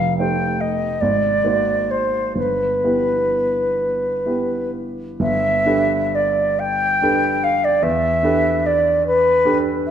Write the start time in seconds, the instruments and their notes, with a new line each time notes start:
Already playing: grand piano F1, flute F5
0.18 grand piano A3 D#4 G4 C5, flute G5
0.60 flute D#5
1.01 grand piano G#1, flute D5
1.44 grand piano A#3 D#4 F#4 C5
1.91 flute C5
2.36 grand piano G1, flute B4
2.84 grand piano B3 E4 G4 B4
4.26 grand piano B3 E4 G4 B4
5.20 grand piano G1, flute E5
5.66 grand piano D4 G4 A4 B4
6.15 flute D5
6.59 flute G5
7.02 grand piano D4 G4 A4 B4
7.44 flute F5
7.64 flute D5
7.82 grand piano E2, flute E5
8.23 grand piano D4 G4 A4 B4
8.66 flute D5
9.06 flute B4
9.45 grand piano D4 G4 A4 B4
9.87 flute E5